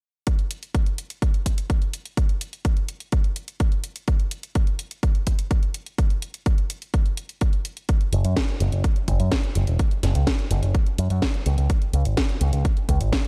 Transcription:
0.27 kick, closed hi-hat
0.39 closed hi-hat
0.51 closed hi-hat
0.63 closed hi-hat
0.75 kick, closed hi-hat
0.86 closed hi-hat
0.98 closed hi-hat
1.10 closed hi-hat
1.22 kick, closed hi-hat
1.34 closed hi-hat
1.46 kick, closed hi-hat
1.58 closed hi-hat
1.70 kick, closed hi-hat
1.82 closed hi-hat
1.93 closed hi-hat
2.05 closed hi-hat
2.17 kick, closed hi-hat
2.29 closed hi-hat
2.41 closed hi-hat
2.53 closed hi-hat
2.65 kick, closed hi-hat
2.77 closed hi-hat
2.89 closed hi-hat
3.00 closed hi-hat
3.12 kick, closed hi-hat
3.24 closed hi-hat
3.36 closed hi-hat
3.48 closed hi-hat
3.60 kick, closed hi-hat
3.72 closed hi-hat
3.84 closed hi-hat
3.96 closed hi-hat
4.08 kick, closed hi-hat
4.20 closed hi-hat
4.31 closed hi-hat
4.43 closed hi-hat
4.55 kick, closed hi-hat
4.67 closed hi-hat
4.79 closed hi-hat
4.91 closed hi-hat
5.03 kick, closed hi-hat
5.15 closed hi-hat
5.27 kick, closed hi-hat
5.39 closed hi-hat
5.51 kick, closed hi-hat
5.63 closed hi-hat
5.74 closed hi-hat
5.86 closed hi-hat
5.98 kick, closed hi-hat
6.10 closed hi-hat
6.22 closed hi-hat
6.34 closed hi-hat
6.46 kick, closed hi-hat
6.58 closed hi-hat
6.70 closed hi-hat
6.82 closed hi-hat
6.94 kick, closed hi-hat
7.06 closed hi-hat
7.17 closed hi-hat
7.29 closed hi-hat
7.41 kick, closed hi-hat
7.53 closed hi-hat
7.65 closed hi-hat
7.77 closed hi-hat
7.89 kick, closed hi-hat
8.01 closed hi-hat
8.13 F#1, closed hi-hat
8.25 F#2, closed hi-hat
8.37 kick, snare, closed hi-hat
8.49 closed hi-hat
8.60 F#1, closed hi-hat
8.72 F#1, closed hi-hat
8.84 kick, closed hi-hat
8.96 closed hi-hat
9.08 F#1, kick, closed hi-hat
9.20 F#2, closed hi-hat
9.32 kick, snare, closed hi-hat
9.44 closed hi-hat
9.55 F#1, closed hi-hat
9.67 E1, closed hi-hat
9.79 kick, closed hi-hat
9.91 closed hi-hat
10.03 F#1, snare, closed hi-hat
10.15 C#2, closed hi-hat
10.27 kick, snare, closed hi-hat
10.39 closed hi-hat
10.51 F#1, closed hi-hat
10.63 F#1, closed hi-hat
10.75 kick, closed hi-hat
10.86 closed hi-hat
10.98 F#2, closed hi-hat
11.10 F#2, closed hi-hat
11.22 kick, snare, closed hi-hat
11.34 closed hi-hat
11.46 C#2, closed hi-hat
11.58 C#2, closed hi-hat
11.70 kick, closed hi-hat
11.82 closed hi-hat
11.93 C#2, closed hi-hat
12.05 G#1, closed hi-hat
12.17 kick, snare, closed hi-hat
12.29 closed hi-hat
12.41 C#2, closed hi-hat
12.53 C#2, closed hi-hat
12.65 kick, closed hi-hat
12.77 closed hi-hat
12.89 C#2, kick, closed hi-hat
13.01 G#1, closed hi-hat
13.13 kick, snare, closed hi-hat

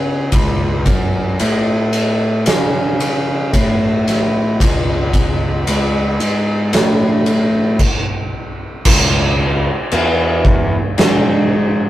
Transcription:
Already playing: C#3
0.32 C#2, kick, ride
0.86 F#2, kick, ride
1.40 A2, ride
1.93 ride
2.46 C#3, snare, ride
3.00 ride
3.53 A2, kick, ride
4.08 snare, ride
4.60 C#2, kick, ride
5.13 kick, ride
5.67 C#2, ride
6.20 G#2, ride
6.73 A2, snare, ride
7.26 ride
7.79 kick, crash
8.85 C#2, kick, crash
9.91 E2, crash
10.45 kick
10.98 G#2, snare, crash

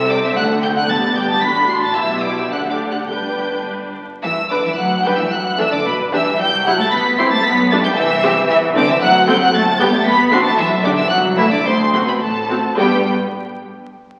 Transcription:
Already playing: C2 C3 C4 A4
0.08 D5 D6
0.23 E5 E6
0.36 D2 D3 A3 A4 F#5 F#6
0.63 G5 G6
0.75 F#5 F#6
0.89 G1 G2 B3 G4 A5 A6
1.15 G5 G6
1.29 A5 A6
1.41 A1 A2 D4 F#4 B5 B6
1.69 C6 C7
1.83 A5 A6
1.95 B1 B2 E4 G4 E5 E6
2.22 D5 D6
2.38 E5 E6
2.51 D2 D3 D4 F#5 F#6
2.70 D5 D6
2.89 F#5 F#6
3.08 G1 G2 D4 B4 G5 G6
4.23 G2 E3 E5 E6
4.50 D3 D4 B4 D5 D6
4.64 E3 E5 E6
4.76 D2 F#3 F#5 F#6
5.03 G3 D4 B4 G5 G6
5.18 E3 E5 E6
5.31 F#2 F#3 F#5 F#6
5.57 E3 D4 A4 E5 E6
5.70 D3 D5 D6
5.84 G2 B2 B4 B5
6.11 E3 D4 G4 E5 E6
6.38 C2 G3 G5 G6
6.64 F#3 E4 G4 F#5 F#6
6.78 A3 A5
6.82 A6
6.91 G1 B3 B5 B6
7.17 C4 E4 G4 C6 C7
7.30 A3 A5 A6
7.43 B1 B3 B5 B6
7.70 A3 D4 G4 A5 A6
7.82 G3 G5 G6
7.96 C2 E3 E5 E6
8.24 C4 G4
8.48 C2 E3 E5 E6
8.75 D3 C4 A4 D5 D6
8.88 E3 E5 E6
9.01 D2 F#3 F#5 F#6
9.28 G3 C4 A4 G5 G6
9.40 F#3 F#5 F#6
9.53 G1 A3 A5 A6
9.79 G3 B3 G4 G5 G6
9.93 A3 A5 A6
10.05 A1 B3 B5 B6
10.31 C4 D4 F#4 C6 C7
10.45 A3 A5 A6
10.57 B1 E3 E5 E6
10.83 D3 D4 G4 D5 D6
10.96 E3 E5 E6
11.10 C2 F#3 F#5 F#6
11.37 E3 A3 E4 E5 E6
11.50 D3 D5 D6
11.64 D2 C3 C5 C6
11.92 C3 C4 F#4 C5 C6
12.05 B2 B4 B5
12.20 A1 A2 A4 A5
12.49 C4 F#4
12.78 G2 G3 B3 G4 B4 G5

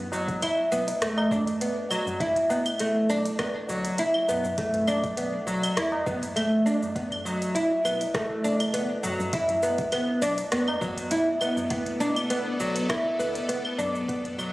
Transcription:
0.12 F#3, tabla na, cabasa
0.28 kick, closed hi-hat, cabasa
0.42 E4, closed hi-hat, cabasa, claves
0.72 B1 B3, cabasa
0.87 closed hi-hat, tabla tin, cabasa
1.01 E2 A3, cross-stick, closed hi-hat, cabasa
1.18 tabla na, claves
1.31 A1 D4, kick, tabla tin, tabla ge, cabasa
1.46 closed hi-hat, tabla na, tabla tin, cabasa
1.61 B3, closed hi-hat, cabasa
1.90 F#3, tabla tin, cabasa, claves
2.06 tabla na, tabla ge, cabasa
2.20 E4, kick, closed hi-hat, cabasa
2.36 closed hi-hat
2.50 B3, tabla na, cabasa
2.66 closed hi-hat, cabasa, claves
2.79 A3, closed hi-hat, cabasa
3.09 B1 D4, cabasa
3.25 closed hi-hat, tabla tin, cabasa
3.39 B3, kick, cross-stick, closed hi-hat, tabla na, cabasa, claves
3.69 D2 F#3, tabla tin, cabasa
3.84 closed hi-hat, tabla tin, cabasa
3.98 F#1 E4, closed hi-hat, cabasa
4.14 claves
4.28 B1 B3, tabla na, tabla ge, cabasa
4.44 tabla tin, tabla ge, cabasa
4.58 A3, kick, closed hi-hat, cabasa
4.74 closed hi-hat, tabla ge
4.87 D4, tabla na, cabasa, claves
5.04 kick, closed hi-hat, cabasa
5.17 B3, closed hi-hat, cabasa
5.47 B1 F#3, cabasa
5.63 closed hi-hat, tabla tin, cabasa, claves
5.77 E2 E4, cross-stick, closed hi-hat, cabasa
5.92 tabla na
6.06 A1 B3, kick, tabla tin, tabla ge, cabasa
6.22 closed hi-hat, tabla na, tabla tin, cabasa
6.36 A3, closed hi-hat, cabasa, claves
6.66 D4, tabla tin, cabasa
6.82 tabla na, tabla ge, cabasa
6.96 B3, kick, closed hi-hat, cabasa
7.12 closed hi-hat, tabla ge, claves
7.25 F#3, tabla na, cabasa
7.42 closed hi-hat, cabasa
7.55 E4, closed hi-hat, cabasa
7.84 B1 B3, cabasa, claves
8.01 closed hi-hat, tabla tin, cabasa
8.14 A3, kick, cross-stick, closed hi-hat, tabla na, cabasa
8.44 F#1 D4, tabla tin, cabasa
8.60 closed hi-hat, tabla tin, cabasa, claves
8.74 B3, closed hi-hat, cabasa
9.03 F#1 F#3, tabla na, tabla ge, cabasa
9.19 tabla tin, tabla ge, cabasa
9.33 B2 E4, kick, closed hi-hat, cabasa
9.49 closed hi-hat, tabla ge
9.63 B3, tabla na, cabasa
9.78 kick, closed hi-hat, cabasa
9.83 B3
9.92 B3, closed hi-hat, cabasa, claves
10.06 D5
10.22 B1 D4, cabasa
10.35 A4, closed hi-hat, tabla tin, cabasa
10.52 E2 B3, cross-stick, closed hi-hat, cabasa
10.68 tabla na, claves
10.81 A1 F#3, kick, tabla tin, tabla ge, cabasa
10.97 closed hi-hat, tabla na, tabla tin, cabasa
11.11 E4, closed hi-hat, cabasa
11.41 B3, tabla tin, cabasa, claves
11.56 tabla na, tabla ge, cabasa
11.70 B3, kick, closed hi-hat, cabasa
11.86 closed hi-hat
12.00 D4, tabla na, cabasa
12.16 closed hi-hat, cabasa, claves
12.30 B3, closed hi-hat, cabasa
12.60 B1 F#3, cabasa
12.76 closed hi-hat, tabla tin, cabasa
12.89 E4, kick, cross-stick, closed hi-hat, tabla na, cabasa, claves
13.19 D2 B3, tabla tin, cabasa
13.35 closed hi-hat, tabla tin, cabasa
13.49 F#1 B3, closed hi-hat, cabasa
13.65 claves
13.78 B1 D4, tabla na, tabla ge, cabasa
13.94 tabla tin, tabla ge, cabasa
14.08 B3, kick, closed hi-hat, cabasa
14.24 closed hi-hat, tabla ge
14.38 F#3, tabla na, cabasa, claves

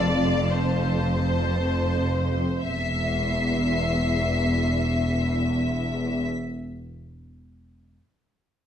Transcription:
Already playing: F1 F2 D5 F5 A5
0.52 C5
2.65 E1 E2 E5 B6 C7

